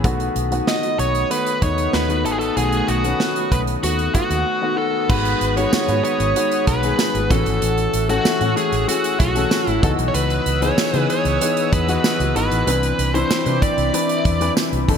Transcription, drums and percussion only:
0.04 kick, closed hi-hat
0.20 closed hi-hat
0.36 closed hi-hat
0.52 closed hi-hat
0.67 snare
0.83 closed hi-hat
0.99 closed hi-hat
1.15 closed hi-hat
1.31 closed hi-hat
1.46 closed hi-hat
1.62 kick, closed hi-hat
1.78 closed hi-hat
1.93 snare
2.10 closed hi-hat
2.26 closed hi-hat
2.41 closed hi-hat
2.57 closed hi-hat
2.72 closed hi-hat
2.88 closed hi-hat
3.04 closed hi-hat
3.20 snare
3.36 closed hi-hat
3.52 kick, closed hi-hat
3.67 closed hi-hat
3.83 closed hi-hat
3.99 closed hi-hat
4.15 kick, closed hi-hat
4.31 closed hi-hat
5.10 kick, crash
5.25 closed hi-hat
5.41 closed hi-hat
5.57 closed hi-hat
5.73 snare, tambourine
5.88 closed hi-hat
6.05 closed hi-hat
6.20 closed hi-hat
6.36 closed hi-hat
6.52 closed hi-hat
6.67 kick, closed hi-hat
6.83 closed hi-hat
6.99 snare, tambourine
7.15 closed hi-hat
7.31 kick, closed hi-hat
7.46 closed hi-hat
7.62 closed hi-hat
7.78 closed hi-hat
7.93 closed hi-hat
8.09 closed hi-hat
8.25 snare, tambourine
8.41 closed hi-hat
8.57 closed hi-hat
8.72 closed hi-hat
8.89 closed hi-hat
9.04 closed hi-hat
9.20 kick, closed hi-hat
9.36 closed hi-hat
9.51 snare, tambourine
9.67 closed hi-hat
9.83 kick, closed hi-hat
9.99 closed hi-hat
10.14 closed hi-hat
10.30 closed hi-hat
10.46 closed hi-hat
10.62 closed hi-hat
10.78 snare, tambourine
10.94 closed hi-hat
11.10 closed hi-hat
11.25 closed hi-hat
11.41 closed hi-hat
11.57 closed hi-hat
11.73 kick, closed hi-hat
11.89 closed hi-hat
12.04 snare, tambourine
12.20 closed hi-hat
12.36 closed hi-hat
12.51 closed hi-hat
12.67 closed hi-hat
12.83 closed hi-hat
12.99 closed hi-hat
13.15 closed hi-hat
13.31 snare, tambourine
13.46 closed hi-hat
13.62 kick, closed hi-hat
13.78 closed hi-hat
13.94 closed hi-hat
14.09 closed hi-hat
14.25 kick, closed hi-hat
14.41 closed hi-hat
14.57 snare, tambourine
14.73 closed hi-hat
14.88 kick, open hi-hat

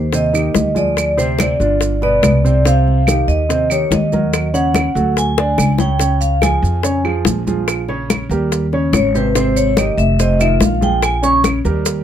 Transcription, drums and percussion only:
0.13 high bongo, high conga, maracas
0.34 high conga, claves, maracas
0.55 high bongo, low bongo, high conga, maracas
0.76 high conga, maracas
0.97 high bongo, high conga, claves, maracas
1.18 high bongo, high conga, maracas
1.39 high bongo, high conga, claves, maracas
1.60 high bongo, high conga, maracas
1.81 high bongo, high conga, maracas
2.02 high bongo, high conga
2.23 high bongo, low bongo, high conga, claves, maracas
2.46 maracas
2.65 high bongo, high conga, maracas
2.88 high conga
3.07 high bongo, high conga, claves, maracas
3.29 high conga, maracas
3.50 high bongo, high conga, maracas
3.70 high conga, claves, maracas
3.92 high bongo, low bongo, high conga, maracas
4.12 high conga, maracas
4.33 high bongo, high conga, claves, maracas
4.54 high bongo, high conga, maracas
4.74 high bongo, high conga, claves, maracas
4.96 high bongo, high conga, maracas
5.17 high bongo, high conga, maracas
5.38 high bongo, high conga
5.58 high bongo, high conga, claves, maracas
5.78 low bongo, high conga, maracas
6.00 high bongo, high conga, maracas
6.21 high conga, maracas
6.42 high bongo, high conga, claves, maracas
6.64 high conga, maracas
6.83 high bongo, high conga, maracas
7.05 high conga, claves
7.25 high bongo, low bongo, high conga, maracas
7.47 high conga, maracas
7.68 high bongo, high conga, claves, maracas
7.88 high bongo, high conga
8.10 high bongo, high conga, claves, maracas
8.31 high bongo, high conga, maracas
8.52 high bongo, high conga, maracas
8.73 high bongo, high conga
8.93 high bongo, low bongo, high conga, claves, maracas
9.15 maracas
9.35 high bongo, high conga, maracas
9.57 high conga, maracas
9.77 high bongo, high conga, claves, maracas
9.98 high conga, maracas
10.19 high bongo, high conga, maracas
10.39 high conga, claves, maracas
10.60 high bongo, low bongo, high conga, maracas
10.82 high conga, maracas
11.03 high bongo, high conga, claves, maracas
11.23 high bongo, high conga, maracas
11.44 high bongo, high conga, claves, maracas
11.65 high bongo, high conga, maracas
11.86 high bongo, high conga, maracas

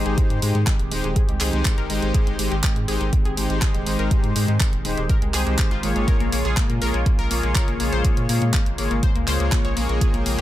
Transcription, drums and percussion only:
0.06 closed hi-hat
0.18 kick, closed hi-hat
0.30 closed hi-hat
0.42 open hi-hat
0.55 closed hi-hat
0.67 kick, clap, closed hi-hat
0.80 closed hi-hat
0.92 open hi-hat
1.04 closed hi-hat
1.16 kick, closed hi-hat
1.29 closed hi-hat
1.40 clap, open hi-hat
1.53 closed hi-hat
1.65 kick, clap, closed hi-hat
1.78 closed hi-hat
1.90 open hi-hat
2.02 closed hi-hat
2.14 kick, closed hi-hat
2.27 closed hi-hat
2.39 open hi-hat
2.52 closed hi-hat
2.63 kick, clap, closed hi-hat
2.76 closed hi-hat
2.88 open hi-hat
3.01 closed hi-hat
3.13 kick, closed hi-hat
3.25 closed hi-hat
3.37 open hi-hat
3.50 closed hi-hat
3.62 kick, clap, closed hi-hat
3.75 closed hi-hat
3.87 open hi-hat
3.99 closed hi-hat
4.11 kick, closed hi-hat
4.24 closed hi-hat
4.36 open hi-hat
4.48 closed hi-hat
4.60 kick, clap, closed hi-hat
4.73 closed hi-hat
4.85 open hi-hat
4.97 closed hi-hat
5.10 kick, closed hi-hat
5.22 closed hi-hat
5.34 clap, open hi-hat
5.47 closed hi-hat
5.58 kick, clap, closed hi-hat
5.71 closed hi-hat
5.83 open hi-hat
5.96 closed hi-hat
6.08 kick, closed hi-hat
6.20 closed hi-hat
6.32 open hi-hat
6.45 closed hi-hat
6.57 kick, clap, closed hi-hat
6.70 closed hi-hat
6.82 open hi-hat
6.94 closed hi-hat
7.06 kick, closed hi-hat
7.19 closed hi-hat
7.31 open hi-hat
7.43 closed hi-hat
7.55 kick, clap, closed hi-hat
7.68 closed hi-hat
7.80 open hi-hat
7.93 closed hi-hat
8.05 kick, closed hi-hat
8.17 closed hi-hat
8.29 open hi-hat
8.42 closed hi-hat
8.54 kick, clap, closed hi-hat
8.66 closed hi-hat
8.78 open hi-hat
8.91 closed hi-hat
9.03 kick, closed hi-hat
9.16 closed hi-hat
9.27 clap, open hi-hat
9.40 closed hi-hat
9.52 kick, clap, closed hi-hat
9.65 closed hi-hat
9.77 open hi-hat
9.89 closed hi-hat
10.01 kick, closed hi-hat
10.14 closed hi-hat
10.26 open hi-hat

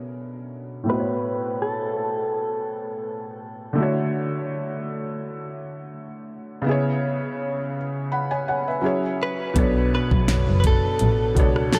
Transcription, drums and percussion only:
9.56 kick, closed hi-hat
10.11 kick
10.28 snare, closed hi-hat
10.64 kick, closed hi-hat
10.99 closed hi-hat
11.36 kick, closed hi-hat
11.56 cross-stick
11.73 snare, closed hi-hat

